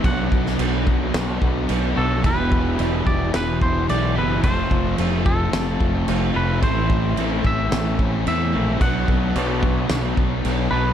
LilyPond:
<<
  \new Staff \with { instrumentName = "Clean electric guitar" } { \time 4/4 \key b \phrygian \tempo 4 = 110 fis''2. r8 a'8 | b'4. d''8 b'8 c''8 d''8 b'8 | c''4 r8 a'2 b'8 | c''4. e''4. e''4 |
fis''2. r8 b'8 | }
  \new Staff \with { instrumentName = "Overdriven electric guitar" } { \time 4/4 \key b \phrygian <b, fis b d' fis'>4 <fis b d' fis'>8 <b d' fis'>4. <fis b d' fis'>8 <b d' fis'>8 | <e b e' g'>4 <e b e' g'>8 <b e' g'>4. <e b e' g'>8 <b e' g'>8 | <f a c' f'>4 <f a c' f'>8 <a c' f'>4. <f a c' f'>8 <a c' f'>8 | <a, e a c' e'>4 <e a c' e'>8 <a c' e'>4. <e a c' e'>8 <a c' e'>8 |
<b, fis b d'>4 <b, fis b d'>8 <fis b d'>4. <b, fis b d'>8 <fis b d'>8 | }
  \new Staff \with { instrumentName = "Overdriven electric guitar" } { \time 4/4 \key b \phrygian <b, fis b d' fis'>2.~ <b, fis b d' fis'>8 <b, fis b d' fis'>8 | <e b e' g'>2.~ <e b e' g'>8 <e b e' g'>8 | <f a c' f'>2.~ <f a c' f'>8 <f a c' f'>8 | <a, e a c' e'>2.~ <a, e a c' e'>8 <a, e a c' e'>8 |
<b, fis b d'>2.~ <b, fis b d'>8 <b, fis b d'>8 | }
  \new Staff \with { instrumentName = "Distorted electric guitar" } { \clef bass \time 4/4 \key b \phrygian <b, fis b>8 <fis b>8 <b, fis b>8 <fis b>4 <fis b>8 <b, fis b>4 | <e, b, e>8 <b, e>8 <e, b, e>8 <b, e>4 <b, e>8 <e, b, e>4 | <f, c f>8 <c f>8 <f, c f>8 <c f>4 <c f>8 <f, c f>4 | <a, e a>8 <e a>8 <a, e a>8 <e a>4 <e a>8 <a, e a>4 |
<b, fis b>8 <fis b>8 <b, fis b>8 <fis b>4 <fis b>8 <b, fis b>4 | }
  \new Staff \with { instrumentName = "Fingered electric bass" } { \clef bass \time 4/4 \key b \phrygian b,,8 b,,8 b,,4 b,,8 b,,8 b,,8 b,,8 | e,,4 e,,8 e,,8 e,,4 b,,8 fis,,8 | f,,8 f,,8 f,,4 f,,8 f,,8 f,,8 f,,8 | a,,4 a,,8 a,,8 a,,4 e,8 ais,,8 |
b,,8 b,,8 b,,4 b,,8 b,,8 b,,8 b,,8 | }
  \new DrumStaff \with { instrumentName = "Drums" } \drummode { \time 4/4 <cymc bd>8 bd16 sn16 cymc8 bd8 <cymc sn>8 bd8 cymc4 | <cymc bd>8 bd8 cymc8 bd8 <cymc sn>8 bd8 cymc4 | <cymc bd>8 bd8 cymc8 bd8 <cymc sn>8 bd8 cymc4 | <cymc bd>8 bd8 cymc8 bd8 <cymc sn>8 bd8 cymc4 |
<cymc bd>8 bd8 cymc8 bd8 <cymc sn>8 bd8 cymc4 | }
>>